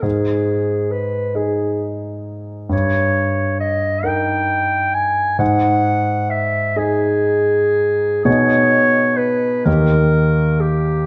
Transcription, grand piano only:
\new Staff \with { instrumentName = "Grand piano" } { \time 6/8 \key gis \minor \tempo 4. = 44 gis,4. <dis' gis'>4. | g,4. <dis' ais'>4. | gis,4. <dis' gis'>4. | <b, dis' gis'>4. <dis, dis' g'>4. | }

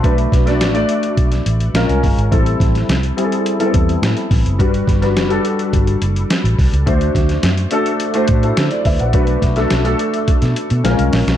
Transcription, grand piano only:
\new Staff \with { instrumentName = "Grand piano" } { \time 4/4 \key b \phrygian \tempo 4 = 106 << { <e'' a''>16 r2. r8. | r1 | r1 | r2 r8. <e' a'>16 <fis' c''>16 <a' d''>16 <b' e''>16 <c'' fis''>16~ |
<c'' fis''>16 r2. r8. | } \\ { <a d' fis' b'>8. <a d' fis' d''>8 <a d' fis' d''>4.~ <a d' fis' d''>16 <aes des' f' bes'>4 | <g c' e' a'>4. <g c' e' gis' a'>8. <g b c' e' a'>4.~ <g b c' e' a'>16 | <g d' fis' b'>8. <g d' fis' b'>8 <g d' fis' a'>2 r8. | <a d' fis' c''>4. <a d' fis' a'>8. <a d' fis' c''>4.~ <a d' fis' c''>16 |
<a d' fis' b'>8. <a d' fis' a'>8 <a d' fis' a'>4.~ <a d' fis' a'>16 <aes c' des' f' bes'>4 | } >> }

